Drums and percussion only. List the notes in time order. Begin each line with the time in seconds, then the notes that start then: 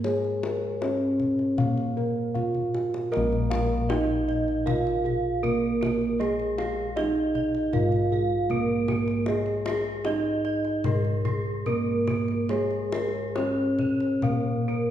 0.04 kendang high
0.24 kendang slap
0.43 kendang slap, kendang high
0.82 kendang slap, kendang high
1.20 kendang slap, kendang low
1.39 kendang slap
1.58 kendang slap, kendang low
1.77 kendang slap
2.35 kendang slap, kendang low
2.55 kendang low
2.74 kendang high
2.94 kendang high
3.13 kendang high
3.33 kendang slap
3.51 kendang slap, kendang high
3.90 kendang slap, kendang high
4.29 kendang slap
4.48 kendang slap
4.67 kendang slap, kendang low
4.87 kendang slap
5.06 kendang low
5.44 kendang slap, kendang low
5.83 kendang slap, kendang high, kendang low
6.01 kendang slap
6.21 kendang high
6.39 kendang slap
6.58 kendang slap, kendang high
6.97 kendang slap, kendang high
7.35 kendang slap, kendang low
7.55 kendang slap
7.73 kendang slap, kendang low
7.92 kendang slap
8.50 kendang slap, kendang low
8.88 kendang slap, kendang high, kendang low
9.08 kendang slap
9.26 kendang high
9.46 kendang slap
9.66 kendang slap, kendang high
10.05 kendang slap, kendang high
10.45 kendang slap
10.65 kendang slap
10.84 kendang slap, kendang low
11.05 kendang slap
11.25 kendang low
11.66 kendang slap, kendang low
12.07 kendang slap, kendang high, kendang low
12.28 kendang slap
12.49 kendang high
12.71 kendang slap
12.92 kendang slap, kendang high
13.36 kendang slap, kendang high
13.79 kendang slap, kendang low
14.00 kendang slap
14.22 kendang slap, kendang low